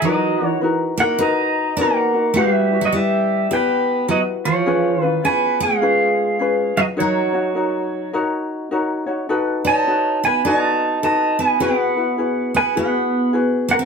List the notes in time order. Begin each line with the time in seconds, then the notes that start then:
0.02 F#3 D#4 F#4 A#4 B4 D#5
0.07 F#4
0.41 D#4 F#4 A#4
0.45 E3 C#5
0.61 D#4 F#4 A#4 B4
0.97 A#3 D#4 F#4 A#4 F#5
1.18 D#4 F#4 A#4 B4
1.23 D#5 A#5
1.77 A#3 D#4 F#4 A#4 B4
1.81 A#4 F#5
2.13 D#4 F#4 A#4
2.34 G3 E4 F#4 G4 B4 F5
2.38 G4
2.54 E5
2.73 E4 F#4 B4
2.81 F#3
2.85 F#4 D#5
2.92 G3 E4 G4 B4 E5
2.97 G4
3.51 B3 E4 G4 B4 G5
4.08 F#3 E4 F#4 G4 B4 D#5
4.45 F3 F4 C#5
4.66 C#4 F4 G#4 B4
4.99 D#3 F4 B4
5.04 C#4 B4
5.24 B3 C#4 F4 G#4 B4 G#5
5.60 G#3 G#4 F5
5.82 C#4 F4 G#4 B4
6.39 C#4 F4 G#4 B4
6.77 F#3 F#4 D#5
6.97 F#3 D#4 F#4 A#4 C#5
7.33 D#4 F#4 C#5
7.55 D#4 F#4 A#4 C#5
8.13 D#4 F#4 A#4 C#5
8.71 D#4 F#4 A#4 C#5
9.06 D#4 F#4 C#5
9.29 D#4 F#4 A4 B4
9.65 D#4 F#4 B4 C#5 A5
9.86 D#4 F#4 A4 B4
10.24 B3 B4 G#5
10.45 D#4 F#4 A4 B4 D#5 G#5
10.58 A5
11.02 D#4 F#4 A4 B4 D#5 A5
11.39 B3 B4 G#5
11.60 B3 E4 F#4 G#4 B4 G5
11.80 F#5
11.97 E4 F#4 B4
12.18 E4 F#4 G#4 B4
12.54 B3 B4 G#5
12.75 B3 E4 F#4 G#4 B4 F#5
13.33 E4 F#4 G#4 B4
13.69 A#3 A#4 F#5
13.79 A#3 E5